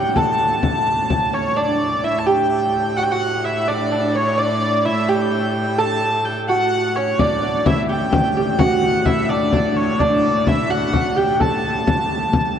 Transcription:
Already playing: A2 G4 G5
0.16 A4 A5, frame drum
0.63 frame drum
1.10 frame drum
1.33 C#4 C#5, frame drum
1.56 A2 D4 D5
2.04 E4 E5
2.19 A5
2.26 G4 G5
2.97 F#4 F#5
3.03 G5
3.11 F#4 F#5
3.44 E4 E5
3.68 D4 D5
3.92 D4
4.15 C#4 C#5
4.38 D4 D5
4.85 E4 E5
5.09 G4 G5
5.78 A4 A5
6.25 G5
6.49 F#4 F#5
6.96 C#4 C#5
7.19 A2 D4 D5, frame drum
7.42 D4
7.66 E4 E5, frame drum
7.89 G4 G5, frame drum
8.12 frame drum
8.36 G4, frame drum
8.59 F#4 F#5, frame drum
9.06 E4 E5, frame drum
9.29 D4 D5, frame drum
9.52 D4, frame drum
9.77 C#5, frame drum
10.00 D4 D5, frame drum
10.47 E4 E5, frame drum
10.70 F#4 F#5, frame drum
10.93 F#4, frame drum
11.16 G4 G5, frame drum
11.40 A4 A5, frame drum
11.87 frame drum
12.33 frame drum

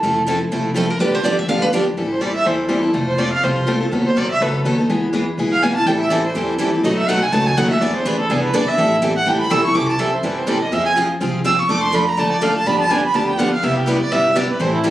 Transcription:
Already playing: A5
0.03 F1 F3 A3 C4 E4 A4
0.27 F3 A3 C4 E4 A4
0.52 C2 F3 A3 C4 E4 A4
0.74 F3 A3 C4 E4 A4
0.90 A#4
0.99 G1 D3 F3 B3 D4 G4 B4
1.15 C5
1.23 D3 F3 B3 D4 G4 D5
1.39 E5
1.48 D2 D3 F3 B3 D4 G4 F5
1.62 B4
1.72 D3 F3 B3 D4 G4
1.97 A1 E3 G3 C4 E4 A4
2.11 C5
2.21 E3 G3 C4 E4 A4 D5
2.35 E5
2.44 E2 E3 G3 C4 E4 A4 C5
2.68 E3 G3 C4 E4 A4
2.82 C4 E4 A4
2.93 F1 F3 A3 C4 F4 A4
3.07 C5
3.18 F3 A3 C4 F4 A4 D5
3.33 F5
3.43 C2 F3 A3 C4 F4 A4 C5
3.67 F3 A3 C4 F4 A4
3.80 C4 F4 A4
3.92 D#2 D#3 F#3 B3 D#4 A4
4.06 C5
4.16 B1 D#3 F#3 B3 D#4 A4 D5
4.31 E5
4.41 C#2 D#3 F#3 B3 D#4 A4 B4
4.65 D#2 D#3 F#3 B3 D#4 A4
4.78 B3 D#4 A4
4.90 E2 E3 G#3 B3 E4 G#4
5.13 E3 G#3 B3 E4 G#4
5.38 B1 E3 G#3 B3 E4 G#4
5.52 F5
5.63 E3 G#3 B3 E4 G#4 G#5
5.75 B3 E4 G#4 A5
5.86 A1 E3 G3 C4 E4 A4 G5
6.00 E5
6.10 E3 G3 C4 E4 A4 D5
6.23 C5
6.35 E2 E3 G3 C4 E4 A4
6.59 E3 G3 C4 E4 A4
6.74 C4 E4 A4
6.83 B1 B2 F#3 A3 D#4 F#4 B4 D#5
6.97 E5
7.08 B2 F#3 A3 D#4 F#4 B4 F#5
7.22 G#5
7.32 C#2 B2 F#3 A3 D#4 F#4 B4 A5
7.46 G#5
7.57 D#2 B2 F#3 A3 D#4 F#4 B4 F#5
7.69 A3 D#4 F#4 E5
7.81 E2 E3 B3 D4 G#4 B4 D5
7.95 C5
8.05 D2 E3 B3 D4 G#4 B4
8.19 A4
8.29 C2 E3 B3 D4 G#4 B4
8.44 B4
8.54 B1 E3 B3 D4 G#4 B4 D5
8.68 B3 D4 G#4 E5
8.78 A1 E3 G3 C4 E4 A4
9.02 E3 G3 C4 E4 A4
9.17 F#5
9.26 A1 E3 G3 C4 E4 A4 G5
9.40 B5
9.50 B1 E3 G3 C4 E4 A4 E6
9.64 C4 E4 A4 C#6
9.75 C2 C3 E3 G3 C4 E4 A4 D6
9.89 A5
9.99 C3 E3 G3 C4 E4 A4 E5
10.13 C5
10.23 G1 C3 E3 G3 C4 E4 A4 B4
10.38 C5
10.47 C3 E3 G3 C4 E4 A4 D5
10.62 D#5
10.71 F2 F3 C4 F4 G#4 E5
10.86 G#5
10.96 F3 C4 F4 G#4
11.20 C2 F3 C4 F4 G#4
11.45 F3 C4 F4 G#4 E6
11.59 C#6
11.69 F2 F3 A3 D4 A4 D5 D6
11.83 C6
11.93 F3 A3 D4 A4 D5 B5
12.09 A#5
12.17 D3 F3 A3 D4 A4 D5 A5
12.32 D5
12.42 F3 A3 D4 A4 D5 F5
12.56 A5
12.66 G2 D3 F3 B3 D4 G4 B5
12.80 A5
12.89 D3 F3 B3 D4 G4 G#5
13.05 B5
13.14 D2 D3 F3 B3 D4 G4 A5
13.28 G5
13.37 D3 F3 B3 D4 G4 F#5
13.53 F5
13.63 C2 C3 G3 B3 E4 G4 E5
13.77 G4
13.86 C3 G3 B3 E4 G4 B4
14.01 D5
14.11 G1 C3 G3 B3 E4 G4 E5
14.35 C3 G3 B3 E4 G4 D5
14.49 B4
14.60 A1 E3 G3 C4 E4 A4 C5
14.74 E4
14.84 E3 G3 C4 E4 G4 A4

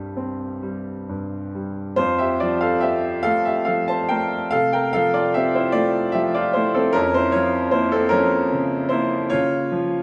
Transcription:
Already playing: G2 G3 G4 E5
0.17 C4
0.63 G3
1.09 G2
1.55 G3
1.96 F2 F4 C5
2.18 G4 E5
2.40 F3 F4 D5
2.61 A4 F5
2.81 C4 G4 E5
3.23 A3 A4 F5
3.45 G4 E5
3.65 F3 A4 F5
3.88 C5 A5
4.09 A3 A#4 G5
4.51 C3 A4 F5
4.73 A#4 G5
4.93 F3 A4 F5
5.14 F4 D5
5.34 C4 G4 E5
5.55 E4 C5
5.72 A3 F4 D5
6.12 F3 G4 E5
6.35 F4 D5
6.53 A3 E4 C5
6.74 C4 A4
6.93 F2 C#4 A#4
7.14 E4 C5
7.32 F3 F4 C#5
7.71 A#3 E4 C5
7.92 C4 A4
8.09 F3 C#4 A#4
8.53 C#3
8.89 A#3 E4 C5
9.30 C#3 F4 C#5
9.72 F3

